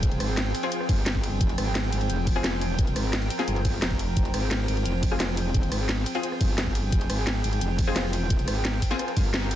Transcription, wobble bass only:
Already playing: F1
0.20 G#1
0.89 G1
1.41 F1
1.58 G#1
1.92 G#1
2.10 F1
2.96 G#1
3.48 G1
3.82 F1
4.17 F1
4.34 G#1
4.68 G#1
4.85 F1
5.45 E1
5.72 G#1
6.41 G1
6.92 F1
7.10 G#1
7.44 G#1
7.61 F1
8.48 G#1
9.17 G1

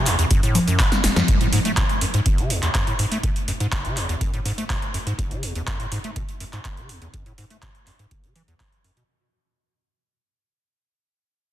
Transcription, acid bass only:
0.06 E2
0.19 E2
0.31 F#2
0.43 A2
0.55 F#2
0.68 F#2
0.80 C#3
1.04 F#1
1.16 F#2
1.28 F#2
1.41 A2
1.53 G#2
1.65 A3
1.77 B2
2.02 F#2
2.14 G#2
2.26 F#1
2.38 C#3
2.50 E2
2.63 E2
2.75 F#2
2.87 A2
2.99 G#2
3.12 A3
3.23 B2
3.48 F#2
3.60 G#2
3.72 F#1
3.85 C#3
3.97 E2
4.09 E2
4.21 F#2
4.34 A2
4.45 G#2
4.58 A3
4.70 B2
4.94 F#2
5.07 G#2
5.19 F#1
5.31 C#3
5.43 E2
5.55 E2
5.67 F#2
5.80 A2
5.92 G#2
6.04 A3
6.16 B2
6.41 F#2
6.53 G#2
6.65 F#1
6.77 C#3
6.89 E2
7.02 E2
7.14 F#2
7.26 A2
7.38 G#2
7.51 A3
7.62 B2
7.87 F#2
7.99 G#2
8.11 F#1
8.24 C#3
8.36 E3
8.48 E2
8.60 F#3
8.84 F#2
8.97 B2

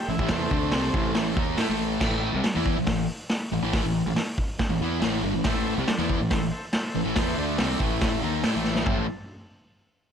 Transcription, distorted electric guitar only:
0.10 A2 E3
0.20 A2 E3
0.29 E3 B3 E4
0.51 D3 A3 D4
0.73 C3 G3 C4
0.95 A2 E3 A3
1.37 D#3 A#3 D#4
1.59 A3 E4
1.69 A2 E3 A3
2.01 A2 E3 A3
2.33 C3 G3
2.44 muted distorted electric guitar stroke
2.55 E3 B3 E4
2.77 A2 E3
2.88 A2 E3
3.52 A2 E3
3.63 A2 E3 A3
3.86 A2 E3
4.07 A2 E3
4.17 muted distorted electric guitar stroke
4.60 muted distorted electric guitar stroke
4.69 A2 E3
4.82 E3 B3 E4
5.01 A2 E3 A3
5.23 G2 D3
5.34 A2 E3
5.46 A2 E3 A3
5.79 C3 G3
5.90 muted distorted electric guitar stroke
5.98 E3 B3 E4
6.19 A2 E3
6.30 A2 E3
6.95 A2 E3
7.04 A2 E3
7.15 E3 B3 E4
7.37 D3 A3 D4
7.59 C3 G3 C4
7.80 A2 E3 A3
8.22 D#3 A#3 D#4
8.44 A3 E4
8.55 A2 E3 A3
8.88 A2 E3 A3

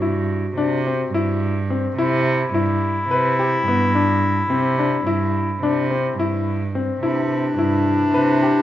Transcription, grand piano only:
0.02 E4
0.57 D4
0.87 C4
1.14 E4
1.70 C4
1.98 E4
2.54 E4
3.11 B4
3.39 G4
3.68 B3
3.95 D4
4.50 C4
4.79 D4
5.07 E4
5.63 D4
5.90 C4
6.19 E4
6.75 C4
7.03 E4
7.58 E4
8.14 B4
8.43 G4

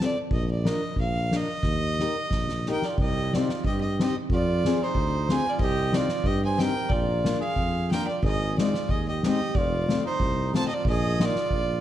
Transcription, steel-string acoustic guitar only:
0.01 C4 F4 A4
0.65 D4 F4 A#4
1.32 D4 F4 A#4
2.00 D#4 G4 A#4
2.68 D#4 G4 A#4
3.35 C4 D#4 G4
4.00 C4 D#4 G4
4.65 C4 F4 G#4
5.30 C4 F4 G#4
5.93 C4 D#4 G4
6.58 C4 D#4 G4
7.25 A#3 D4 F4
7.92 A#3 D4 F4
8.59 G#3 C4 D#4
9.24 G#3 C4 D#4
9.88 A3 C4 F4
10.53 A3 C4 F4
11.19 A#3 D#4 F4

